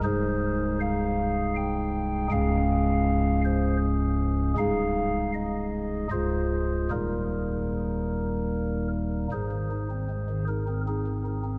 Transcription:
<<
  \new Staff \with { instrumentName = "Pipe organ" } { \time 3/4 \key aes \major \tempo 4 = 78 c''4 f''4 g''4 | f''4. c''8 r4 | f''4 ees''4 c''4 | bes'2~ bes'8 r8 |
<ees' aes' c''>4. bes'8 <c' ees' aes'>4 | }
  \new Staff \with { instrumentName = "Pipe organ" } { \clef bass \time 3/4 \key aes \major << { <c, aes ees' aes'>2. | <des, aes des' aes'>2. | <c, aes ees' aes'>2 <des, aes f' aes'>4 | <ees, g bes ees'>2. |
aes,16 ees16 ees'16 c'16 aes16 ees16 ees'16 c'8 ees16 ees'16 c'16 | } \\ { c,,2. | des,,2. | c,,2 des,,4 | ees,,2. |
aes,,2. | } >> }
>>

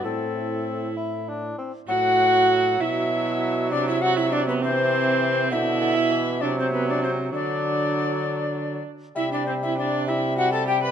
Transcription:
<<
  \new Staff \with { instrumentName = "Recorder" } { \time 6/8 \key a \dorian \tempo 4. = 66 a'4. r4. | fis''4. e''4. | d''16 e''16 fis''16 e''16 d''16 b'16 c''4. | e''4. d''16 c''16 b'16 d''16 c''8 |
d''2~ d''8 r8 | e''16 d''16 c''16 e''16 d''8 e''8 fis''16 a''16 g''16 b''16 | }
  \new Staff \with { instrumentName = "Viola" } { \time 6/8 \key a \dorian e'2~ e'8 r8 | fis'4. e'4. | d'16 e'16 fis'16 e'16 d'16 b16 c'4. | e'4. d'16 c'16 b16 d'16 c'8 |
d'2~ d'8 r8 | e'16 d'16 c'16 e'16 d'8 e'8 fis'16 a'16 g'16 b'16 | }
  \new Staff \with { instrumentName = "Bassoon" } { \clef bass \time 6/8 \key a \dorian c'4. e'8 d'8 c'8 | fis2.~ | fis4. e4. | d8 d8 e8 fis4. |
fis2~ fis8 r8 | g4. g4. | }
  \new Staff \with { instrumentName = "Trombone" } { \clef bass \time 6/8 \key a \dorian a,2~ a,8 r8 | a,4. b,4. | c2. | b,4. c4. |
d2~ d8 r8 | c2. | }
>>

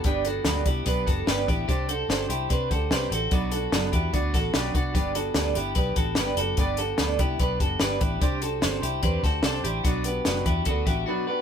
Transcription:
<<
  \new Staff \with { instrumentName = "Clean electric guitar" } { \time 4/4 \key b \phrygian \tempo 4 = 147 <d' g'>8 <fis' a'>4 <e' g'>8 <g' b'>8 <fis' a'>8 <g' b'>8 <e' g'>8 | <d' g'>8 <fis' a'>4 <e' g'>8 <g' b'>8 <fis' a'>8 <g' b'>8 <fis' a'>8 | <d' fis'>8 <fis' a'>4 <e' g'>8 <d' fis'>8 <fis' a'>8 <d' g'>8 <d' fis'>8 | <d' g'>8 <fis' a'>4 <e' g'>8 <g' b'>8 <fis' a'>8 <g' b'>8 <fis' a'>8 |
<d' g'>8 <fis' a'>4 <e' g'>8 <g' b'>8 <fis' a'>8 <g' b'>8 <e' g'>8 | <d' g'>8 <fis' a'>4 <e' g'>8 <g' b'>8 <fis' a'>8 <d' a'>8 <e' g'>8 | <d' fis'>8 <g' b'>4 <e' g'>8 <fis' a'>8 <e' g'>8 <d' fis'>8 <g' b'>8 | }
  \new Staff \with { instrumentName = "Steel-string acoustic guitar" } { \time 4/4 \key b \phrygian <g, g b d' g' b'>8 <b d' g' b'>8 <g, g b d' g' b'>8 <b d' g' b'>8 <b d' g' b'>8 <b d' g' b'>8 <g, g b d' g' b'>8 <b d' g' b'>8 | <c c' d' g' c''>8 <d' g' c''>8 <c c' d' g' c''>8 <d' g' c''>8 <c' d' g' c''>8 <d' g' c''>8 <c c' d' g' c''>8 <d' g' c''>8 | <b, fis b d' fis' b'>8 <b d' fis' b'>8 <b, fis b d' fis' b'>8 <b d' fis' b'>8 <b d' fis' b'>8 <b d' fis' b'>8 <b, fis b d' fis' b'>8 <b d' fis' b'>8 | <g, g b d' g' b'>8 <b d' g' b'>8 <g, g b d' g' b'>8 <b d' g' b'>8 <b d' g' b'>8 <b d' g' b'>8 <g, g b d' g' b'>8 <b d' g' b'>8 |
<g, g b d' g' b'>8 <b d' g' b'>8 <g, g b d' g' b'>8 <b d' g' b'>8 <b d' g' b'>8 <b d' g' b'>8 <g, g b d' g' b'>8 <b d' g' b'>8 | <c c' d' g' c''>8 <d' g' c''>8 <c c' d' g' c''>8 <d' g' c''>8 <c' d' g' c''>8 <d' g' c''>8 <c c' d' g' c''>8 <d' g' c''>8 | <b, fis b d' fis' b'>8 <b d' fis' b'>8 <b, fis b d' fis' b'>8 <b d' fis' b'>8 <b d' fis' b'>8 <b d' fis' b'>8 <b, fis b d' fis' b'>8 <b d' fis' b'>8 | }
  \new Staff \with { instrumentName = "Fingered electric bass" } { \clef bass \time 4/4 \key b \phrygian g,,4 d,8 c,8 b,,8 fis,,8 g,,8 a,,8 | c,4 g,,8 c,8 c8 d,8 c,8 a,,8 | b,,4 fis,,8 e,8 d,8 a,,8 b,,8 c,8 | g,,4 d,8 g,,8 b,,8 a,,8 g,,8 fis,,8 |
g,,4 d,8 c,8 b,,8 fis,,8 g,,8 a,,8 | c,4 g,,8 c,8 e,8 d,8 c,8 a,,8 | b,,4 fis,,8 e,8 d,8 a,,8 r4 | }
  \new DrumStaff \with { instrumentName = "Drums" } \drummode { \time 4/4 <hh bd>8 hh8 <hh sn>8 <hh bd>8 <hh bd>8 <hh bd>8 <hh sn>8 <hh bd>8 | <hh bd>8 hh8 <hh sn>8 hh8 <hh bd>8 <hh bd>8 <hh sn>8 hh8 | <hh bd>8 hh8 <hh sn>8 <hh bd>8 <hh bd>8 <hh bd sn>8 <hh sn>8 <hh bd>8 | <hh bd>8 hh8 <hh sn>8 hh8 <hh bd>8 <hh bd>8 <hh sn>8 hh8 |
<hh bd>8 hh8 <hh sn>8 <hh bd>8 <hh bd>8 <hh bd>8 <hh sn>8 <hh bd>8 | <hh bd>8 hh8 <hh sn>8 hh8 <hh bd>8 <hh bd sn>8 <hh sn>8 hh8 | <hh bd>8 hh8 <hh sn>8 <hh bd>8 <hh bd>8 <hh bd>8 r4 | }
>>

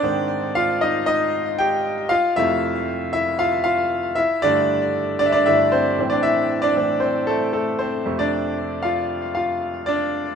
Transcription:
<<
  \new Staff \with { instrumentName = "Grand piano" } { \time 4/4 \key f \major \tempo 4 = 116 << { d''4 f''8 ees''8 ees''4 g''4 | f''8 e''4. e''8 f''8 f''4 | e''8 d''4. d''32 e''32 d''16 e''8 c''8. d''16 | e''8. d''8. c''8 a'8 a'8 c''8. d''16~ |
d''4 f''4 f''4 d''4 | } \\ { d'4 f'8 ees'8 ees'4 g'4 | f'8 e'4. e'8 f'8 f'4 | e'8 d'4. d'16 d'16 e'8 c'8. d'16 | e'8. d'8. c'8 a8 a8 c'8. d'16~ |
d'4 f'4 f'4 d'4 | } >> }
  \new Staff \with { instrumentName = "Grand piano" } { \clef bass \time 4/4 \key f \major <aes, ees c'>4. r2 r8 | r8 <f, c a>2.~ <f, c a>8 | r8 <g, d a>2 <g, d a>8 r8 <a, e c'>8 | r4 <a, e c'>8 r2 <f, c a>8~ |
<f, c a>4 r2. | }
>>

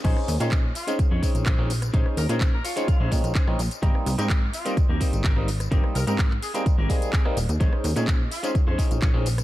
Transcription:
<<
  \new Staff \with { instrumentName = "Horn section" } { \time 4/4 \key bes \dorian \tempo 4 = 127 r4. f'8 r2 | r8 bes'16 bes'16 r16 bes'16 f'4. r4 | r4. f'8 r2 | r8 bes'16 bes'16 r8 aes'16 aes'16 r8 aes'8. r8. |
r4. f'8 r2 | }
  \new Staff \with { instrumentName = "Clean electric guitar" } { \time 4/4 \key bes \dorian << { r1 | r4. des''8 f''4 aes''4 | r1 | r1 |
r1 | } \\ { <des' ees' aes' c''>16 r8 <des' ees' aes' c''>8 r8 <des' ees' aes' c''>16 r16 <des' ees' aes' des''>16 r8 <des' ees' aes' c''>16 r8. | <des' ees' aes' c''>16 r8 <des' ees' aes' c''>8 r8 <des' ees' aes' des''>16 r16 <des' ees' aes' c''>16 r8 <des' ees' aes' c''>16 r8. | <c' g' bes'>16 r8 <c' g' bes'>8 r8 <c' g' bes'>16 r16 <c' g' bes'>16 r8 <c' g' bes'>16 r8. | <c' g' bes'>16 r8 <c' g' bes'>8 r8 <c' g' bes'>16 r16 <c' g' bes'>16 r8 <c' g' bes'>16 r8. |
<des' ees' aes' c''>16 r8 <des' ees' aes' c''>8 r8 <des' ees' aes' c''>16 r16 <des' ees' aes' c''>16 r8 <des' ees' aes' des''>16 r8. | } >> }
  \new Staff \with { instrumentName = "Clav" } { \time 4/4 \key bes \dorian <aes des' ees' c''>8. <aes c' des' ees'>16 r8. <aes c' des' ees'>8 r16 <aes c' des' ees'>8 r16 <aes c' des' ees'>16 r8 | <aes des' ees' c''>8. <aes c' des' ees'>16 r8. <aes c' des' ees'>8 r16 <aes c' des' ees'>8 r16 <aes c' des' ees'>16 r8 | <g bes c' ees'>8. <g bes c' ees'>16 r8. <g bes c' ees'>8 r16 <g bes c' ees'>8 r16 <g bes c' ees'>16 r8 | <g bes c' ees'>8. <g bes c' ees'>16 r8. <g bes c' ees'>8 r16 <g bes c' ees'>8 r16 <g bes c' ees'>16 r8 |
<aes des' ees' c''>8. <aes c' des' ees'>16 r8. <aes c' des' ees'>8 r16 <aes c' des' ees'>8 r16 <aes c' des' ees'>16 r8 | }
  \new Staff \with { instrumentName = "Analog synth bass" } { \clef bass \time 4/4 \key bes \dorian bes,,16 r16 ees,16 bes,8. r8 f,16 f,16 r16 bes,,16 bes,,16 bes,,8. | bes,,16 r16 ees,16 bes,8. r8. bes,,16 bes,16 bes,,16 r16 bes,,16 bes,,16 r16 | aes,,16 r16 c,16 aes,8. r8 ees,16 ees,16 r16 aes,,16 aes,,16 aes,,8. | aes,,16 r16 c,16 aes,8. r8. aes,,16 r4 ees,,16 ees,16 |
bes,,16 r16 ees,16 bes,8. r8 f,16 f,16 r16 bes,,16 bes,,16 bes,,8. | }
  \new DrumStaff \with { instrumentName = "Drums" } \drummode { \time 4/4 <cymc hh bd tamb>16 ss16 <hho tamb>16 <hh tamb>16 <hc hh bd tamb>8 <hho tamb>16 <hh tamb>16 <hh bd tamb>8 <hho bd tamb>16 <hh tamb>16 <hc hh bd tamb>8 <hho tamb>16 <hh ss tamb>16 | <hh bd tamb>16 ss16 <hho tamb>16 <hh tamb>16 <hc hh bd tamb>8 <hho tamb>16 <hh tamb>16 <hh bd tamb>8 <hho bd tamb>16 <hh tamb>16 <hc hh bd tamb>16 ss16 <hho tamb>16 <hh tamb>16 | <hh bd tamb>16 ss16 <hho tamb>16 <hh tamb>16 <hc hh bd tamb>8 <hho tamb>16 <hh tamb>16 <hh bd tamb>8 <hho bd tamb>16 <hh tamb>16 <hc hh bd tamb>8 <hho tamb>16 <hh ss tamb>16 | <hh bd tamb>16 ss16 <hho tamb>16 <hh tamb>16 <hc hh bd tamb>16 hc16 <hho tamb>16 <hh tamb>16 <hh bd tamb>8 <hho bd tamb>16 <hh tamb>16 <hc hh bd tamb>16 ss16 <hho tamb>16 <hh tamb>16 |
<hh bd tamb>16 ss16 <hho tamb>16 <hh tamb>16 <hc hh bd tamb>8 <hho tamb>16 <hh tamb>16 <hh bd tamb>8 <hho bd tamb>16 <hh tamb>16 <hc hh bd tamb>8 <hho tamb>16 <hh ss tamb>16 | }
>>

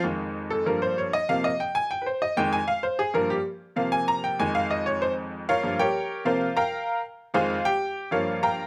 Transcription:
<<
  \new Staff \with { instrumentName = "Upright piano" } { \time 4/4 \key f \minor \tempo 4 = 193 r4. a'8 bes'8 c''8 des''8 ees''8 | f''8 ees''8 g''8 aes''8 g''8 <b' c''>8 ees''8 g''8 | aes''8 f''8 c''8 aes'8 bes'8 g'8 r4 | f''8 aes''8 bes''8 g''8 aes''8 f''8 ees''8 des''8 |
c''8 r4 <f' bes' des'' f''>4 <g' bes' des'' g''>4. | <f' bes' c'' f''>4 <bes' f'' g'' bes''>4. r4 <f' aes' c'' f''>8~ | <f' aes' c'' f''>8 <g' g''>4. <f' bes' des'' f''>4 <bes' f'' g'' bes''>4 | }
  \new Staff \with { instrumentName = "Upright piano" } { \clef bass \time 4/4 \key f \minor <f, ees aes>2 <g, f bes>4. r8 | <c f bes>8 r2. <f, ees aes>8 | r2 <g, f bes>8 r4. | <c f bes>2 <f, ees aes>2~ |
<f, ees aes>2 <g, f bes>8 r4. | <c f bes>8 r2. <f, ees aes>8 | r2 <g, f bes>4. r8 | }
>>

